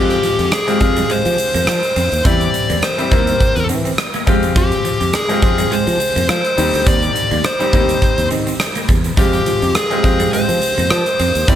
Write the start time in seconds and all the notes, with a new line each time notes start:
Already playing: F2 G#3 C4 F4 G4
0.10 closed hi-hat
0.23 F3, closed hi-hat
0.39 F2, muted clean electric guitar stroke, closed hi-hat
0.52 G#4, cross-stick, closed hi-hat
0.67 G#3 C4 F4 G4, closed hi-hat
0.80 F2 G#3 C4 F4 G4, muted clean electric guitar stroke, kick, closed hi-hat
0.96 G3, closed hi-hat
1.10 G#3 C5, muted fretless electric bass stroke, closed hi-hat
1.25 F3, muted clean electric guitar stroke, closed hi-hat
1.38 closed hi-hat
1.54 F2 A#3, closed hi-hat
1.67 F3 C5, cross-stick, closed hi-hat
1.83 closed hi-hat
1.96 F2 C4, closed hi-hat
2.12 D#2, closed hi-hat
2.24 E2 E3 G3 C4 E4 G4 D5, kick, closed hi-hat
2.41 closed hi-hat
2.54 muted clean electric guitar stroke, closed hi-hat
2.70 E2 A#3, closed hi-hat
2.82 C5, muted clean electric guitar stroke, cross-stick, closed hi-hat
2.98 G3 C4 E4 G4, closed hi-hat
3.11 D#2 G3 A#3 C4 E4 A#4, kick, closed hi-hat
3.27 closed hi-hat
3.40 muted clean electric guitar stroke, kick, closed hi-hat
3.56 E2, closed hi-hat
3.69 E3 C4, closed hi-hat
3.85 C4, closed hi-hat
3.98 muted clean electric guitar stroke, cross-stick, closed hi-hat
4.14 A#3, closed hi-hat
4.26 F2 G#3 C4 F4 G4, kick, closed hi-hat
4.43 closed hi-hat
4.56 G3 G4, kick, closed hi-hat
4.72 closed hi-hat
4.85 F3, closed hi-hat
5.01 F2, muted clean electric guitar stroke, closed hi-hat
5.13 G#4, cross-stick, closed hi-hat
5.29 G#3 C4 F4 G4, closed hi-hat
5.42 F2 G#3 C4 F4 G4, muted clean electric guitar stroke, kick, closed hi-hat
5.58 G3, closed hi-hat
5.71 G#3 C5, muted fretless electric bass stroke, closed hi-hat
5.87 F3, muted clean electric guitar stroke, closed hi-hat
6.00 closed hi-hat
6.16 F2 A#3, closed hi-hat
6.29 F3 C5, cross-stick, closed hi-hat
6.45 closed hi-hat
6.57 D#2 D#3 G3 C4 D#4 G4, closed hi-hat
6.73 D2, closed hi-hat
6.87 D#2 C4 D5, kick, closed hi-hat
7.03 closed hi-hat
7.15 muted clean electric guitar stroke, closed hi-hat
7.31 D#2 A#3, closed hi-hat
7.44 C5, muted clean electric guitar stroke, cross-stick, closed hi-hat
7.59 G3 C4 D#4 G4, closed hi-hat
7.73 D#2 G3 A#3 C4 D#4 G4, kick, closed hi-hat
7.89 closed hi-hat
8.02 muted clean electric guitar stroke, kick, closed hi-hat
8.18 D#2, closed hi-hat
8.31 D#3 C4, closed hi-hat
8.47 C4, closed hi-hat
8.60 muted clean electric guitar stroke, cross-stick, closed hi-hat
8.75 A#3, closed hi-hat
8.89 E2 G3, kick, closed hi-hat
9.04 closed hi-hat
9.17 F2 G3 G#3 C4 F4 G4, kick, closed hi-hat
9.33 closed hi-hat
9.46 F3, closed hi-hat
9.62 F2, muted clean electric guitar stroke, closed hi-hat
9.75 G#4, cross-stick, closed hi-hat
9.90 G#3 C4 F4 G4, closed hi-hat
10.03 F2 G#3 C4 F4 G4, muted clean electric guitar stroke, kick, closed hi-hat
10.20 G3, closed hi-hat
10.33 G#3 C5, muted fretless electric bass stroke, closed hi-hat
10.49 F3, muted clean electric guitar stroke, closed hi-hat
10.62 closed hi-hat
10.78 F2 A#3, closed hi-hat
10.91 F3 C5, cross-stick, closed hi-hat
11.06 closed hi-hat
11.19 F2 C4, closed hi-hat
11.35 D#2, closed hi-hat
11.48 E2 E3 G3 C4 E4 G4 D5, kick, closed hi-hat